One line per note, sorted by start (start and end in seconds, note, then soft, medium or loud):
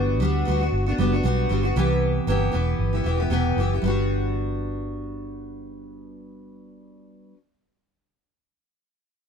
0.00 0.22 G1 loud
0.00 0.20 G3 medium
0.00 0.20 B3 medium
0.00 0.21 D4 medium
0.00 0.21 F#4 medium
0.20 0.43 D2 medium
0.20 0.44 G3 medium
0.20 0.45 B3 medium
0.20 0.46 D4 medium
0.20 0.47 F#4 medium
0.45 0.69 D2 medium
0.45 0.60 G3 medium
0.45 0.61 B3 medium
0.45 0.60 D4 medium
0.45 0.59 F#4 medium
0.60 0.88 B3 soft
0.60 0.87 D4 soft
0.60 0.85 F#4 medium
0.72 0.93 G1 medium
0.86 0.98 B3 soft
0.86 0.99 D4 medium
0.86 0.98 F#4 medium
0.98 1.20 F#1 medium
0.98 1.12 G3 medium
0.98 1.13 B3 medium
0.98 1.12 D4 medium
0.98 1.11 F#4 medium
1.12 1.23 B3 soft
1.12 1.24 D4 medium
1.12 1.24 F#4 medium
1.23 1.45 B1 medium
1.23 1.48 G3 medium
1.23 1.49 B3 medium
1.23 1.49 D4 medium
1.23 1.51 F#4 medium
1.49 1.71 G1 medium
1.49 1.64 G3 medium
1.49 1.64 B3 medium
1.49 1.64 D4 medium
1.49 1.62 F#4 medium
1.63 1.76 B3 soft
1.63 1.76 D4 medium
1.63 1.75 F#4 medium
1.76 2.18 C2 medium
1.76 2.26 C3 medium
1.76 2.27 E3 medium
1.76 2.28 B3 medium
1.76 2.27 E4 medium
1.76 2.29 G4 medium
2.27 2.49 G1 medium
2.27 2.53 C3 medium
2.27 2.50 E3 medium
2.27 2.51 B3 medium
2.27 2.53 E4 medium
2.27 2.54 G4 medium
2.52 2.75 E1 medium
2.52 2.93 E3 medium
2.52 2.93 B3 medium
2.52 2.93 E4 medium
2.52 2.92 G4 medium
2.79 3.00 G1 medium
2.93 3.04 B3 soft
2.93 3.05 E4 soft
2.93 3.05 G4 soft
3.04 3.27 E1 medium
3.04 3.19 E3 medium
3.04 3.19 B3 medium
3.04 3.19 E4 medium
3.04 3.17 G4 medium
3.18 3.30 B3 soft
3.18 3.30 E4 soft
3.18 3.30 G4 medium
3.30 3.52 E1 medium
3.30 3.57 C3 medium
3.30 3.57 E3 medium
3.30 3.57 B3 medium
3.30 3.57 E4 medium
3.30 3.58 G4 medium
3.57 3.78 F#1 medium
3.57 3.72 E3 medium
3.57 3.72 B3 medium
3.57 3.73 E4 soft
3.57 3.72 G4 medium
3.73 3.83 B3 soft
3.73 3.85 E4 soft
3.73 3.84 G4 soft
3.82 7.20 G1 medium
3.82 7.32 G3 medium
3.82 7.34 B3 medium
3.82 7.35 D4 medium
3.87 7.37 F#4 medium